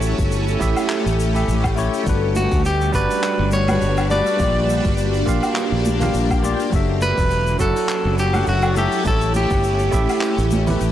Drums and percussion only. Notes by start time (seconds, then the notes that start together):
0.02 shaker
0.18 kick, open hi-hat, shaker
0.32 open hi-hat, shaker
0.48 shaker
0.61 kick, shaker
0.77 open hi-hat, low woodblock, shaker
0.90 clap, shaker
1.07 shaker
1.20 shaker
1.35 open hi-hat, shaker
1.48 open hi-hat, shaker
1.64 kick, low woodblock, shaker
1.77 shaker
1.93 open hi-hat, shaker
2.06 kick, open hi-hat, shaker
2.35 high conga, shaker
2.51 kick, open hi-hat, shaker
2.65 open hi-hat, shaker
2.81 shaker
2.94 kick, shaker
3.10 open hi-hat, shaker
3.23 clap, shaker
3.51 shaker
3.68 open hi-hat, high conga, low woodblock, shaker
3.81 open hi-hat, shaker
3.97 low woodblock, shaker
4.10 high conga, shaker
4.26 open hi-hat, shaker
4.39 kick, open hi-hat, shaker
4.70 shaker
4.84 kick, open hi-hat, shaker
4.98 open hi-hat, shaker
5.14 shaker
5.27 kick, shaker
5.43 open hi-hat, low woodblock, shaker
5.56 clap, open hi-hat, shaker
5.85 high conga, shaker
6.01 open hi-hat, low conga, shaker
6.14 open hi-hat, shaker
6.31 kick, low woodblock, shaker
6.44 high conga, shaker
6.59 open hi-hat, shaker
6.73 kick, open hi-hat, shaker
7.02 high conga, shaker
7.18 kick, open hi-hat, shaker
7.30 open hi-hat, shaker
7.47 shaker
7.60 kick, shaker
7.76 open hi-hat, shaker
7.89 clap, open hi-hat, shaker
8.18 shaker
8.34 open hi-hat, high conga, low woodblock, shaker
8.46 open hi-hat, shaker
8.62 low woodblock, shaker
8.76 high conga, shaker
8.92 open hi-hat, shaker
9.05 kick, open hi-hat, shaker
9.21 shaker
9.34 high conga, shaker
9.50 kick, open hi-hat, shaker
9.63 open hi-hat, shaker
9.79 shaker
9.92 kick, shaker
10.09 open hi-hat, low woodblock, shaker
10.21 clap, open hi-hat, shaker
10.38 shaker
10.51 high conga, shaker
10.67 open hi-hat, low conga, shaker
10.81 open hi-hat, shaker